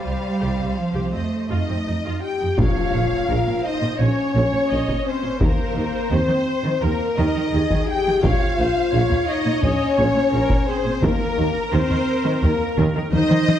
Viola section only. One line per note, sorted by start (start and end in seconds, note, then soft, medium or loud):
0.04 0.12 F4 soft
0.40 0.57 G4 soft
0.58 0.65 C4 soft
0.94 1.12 G4 soft
1.13 1.20 C4 soft
1.49 1.67 F4 soft
1.69 1.76 C4 soft
1.86 1.94 D#4 soft
2.04 2.21 F4 soft
2.39 2.47 D#4 soft
2.57 3.25 C#5 medium
3.29 3.65 A#4 soft
3.64 4.00 C5 medium
3.99 4.33 C#5 medium
4.34 4.70 C#5 medium
4.70 5.06 D#5 medium
5.06 5.41 C#4 soft
5.41 6.80 C5 medium
6.81 7.53 A#4 medium
7.53 8.24 G#4 medium
8.23 8.58 C#5 medium
8.58 8.93 C5 medium
8.93 9.63 C#5 medium
9.62 9.98 D#5 medium
9.97 10.33 C#5 medium
10.33 10.68 A#4 medium
10.68 11.03 G#4 medium
11.03 13.09 A#4 medium
13.14 13.59 C5 medium